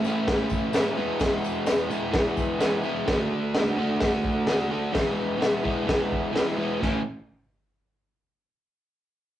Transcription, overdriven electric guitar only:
0.04 A2 E3 A3 C#4 E4
0.28 A2 E3 A3 C#4 E4
0.74 A2 E3 A3 C#4 E4
0.96 E3 G#3 B3 E4
1.20 E3 G#3 B3 E4
1.66 E3 G#3 B3 E4
1.89 E3 G#3 B3 E4
2.12 E3 G#3 B3 E4
2.59 E3 G#3 B3 E4
2.83 E3 G#3 B3 E4
3.07 D3 A3 D4 F#4
3.55 D3 A3 D4 F#4
3.78 D3 A3 D4 F#4
4.00 D3 A3 D4 F#4
4.48 D3 A3 D4 F#4
4.70 D3 A3 D4 F#4
4.93 E3 G#3 B3 E4
5.38 E3 G#3 B3 E4
5.63 E3 G#3 B3 E4
5.86 E3 G#3 B3 E4
6.33 E3 G#3 B3 E4
6.57 E3 G#3 B3 E4
6.81 A2 E3 A3 C#4 E4

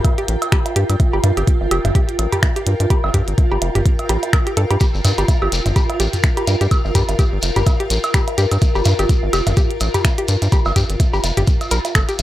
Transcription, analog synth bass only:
0.28 A1
0.76 G2
0.90 G2
1.13 G1
1.24 G2
1.37 G1
1.61 G1
1.71 F1
1.85 G1
2.19 A1
2.66 G2
2.80 G2
3.04 G1
3.14 G2
3.28 G1
3.51 G1
3.62 F1
3.75 G1
4.09 A1
4.57 G2
4.71 G2
4.94 G1
5.05 G2
5.18 G1
5.42 G1
5.52 F1
5.66 G1
6.00 A1
6.47 G2
6.61 G2
6.85 G1
6.95 G2
7.09 G1
7.32 G1
7.43 F1
7.56 G1
7.90 A1
8.38 G2
8.52 G2
8.75 G1
8.86 G2
8.99 G1
9.23 G1
9.33 F1
9.47 G1
9.81 A1
10.28 G2
10.42 G2
10.66 G1
10.76 G2
10.90 G1
11.13 G1
11.24 F1
11.37 G1
11.71 A#1
11.95 G1
12.19 G1

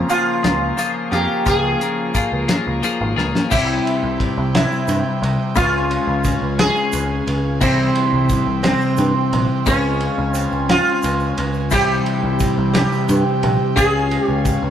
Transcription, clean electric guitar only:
Already playing: C#3 F4 G#4
0.09 F3 A#3 F4 G#4
0.43 A#3 F4 G#4
0.77 F3 A#3 F4 G#4
1.11 A#3 F4 G#4
1.46 C#3 F3 A#3 F4 G#4
1.81 A#3 F4 G#4
2.14 F3 A#3 F4 G#4
2.48 A#3 F4 G#4
2.83 F3 A#3 F4 G#4
3.16 A#3 F4 G#4
3.50 C3 G3 C4 E4 G4
5.56 C#3 G#3 C#4 F4
7.61 C3 E3 G3 C4 E4
9.66 C#3 G#3 C#4 F4
11.71 C3 E3 G3 C4 E4
13.76 C#3 G#3 C#4 F4

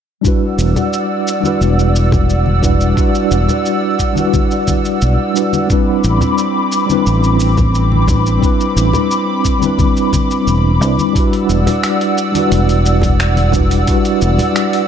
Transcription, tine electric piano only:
0.21 G3 D4 E4
0.26 F#4 B4
1.41 G3 D4 E4
1.46 F#4 B4
2.61 G3 D4 E4 F#4 B4
2.94 G3 D4 E4
2.99 F#4 B4
4.13 G3 D4 E4
4.19 F#4 B4
5.34 G3 D4 E4 F#4 B4
5.66 G3 C4 D4
5.71 E4 B4
6.86 G3 C4 D4
6.92 E4 B4
8.07 G3 C4 D4 E4 B4
8.39 G3 C4 D4
8.44 E4 B4
9.59 G3 C4 D4
9.64 E4 B4
10.80 G3 C4 D4 E4 B4
11.13 G3 D4 E4
11.18 F#4 B4
12.32 G3 D4 E4
12.37 F#4 B4
13.53 G3 D4 E4 F#4 B4
13.84 G3 D4 E4
13.90 F#4 B4

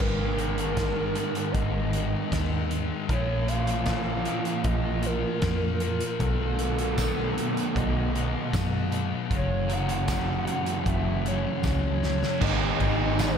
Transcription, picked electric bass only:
0.00 G#1
1.54 G#1
2.32 D#2
3.09 A#1
4.65 A#1
5.42 F2
6.20 B1
7.76 B1
8.53 F#2
9.31 F#1
10.86 F#1
11.63 C#2
12.42 G#1
12.80 G#1

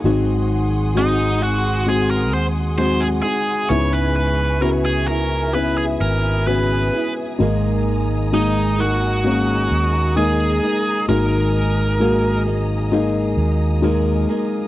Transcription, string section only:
Already playing: G#4
0.05 F#5 C6 D#6
3.70 E5 G#5 C#6
5.55 D#6
7.41 D#5 A#5

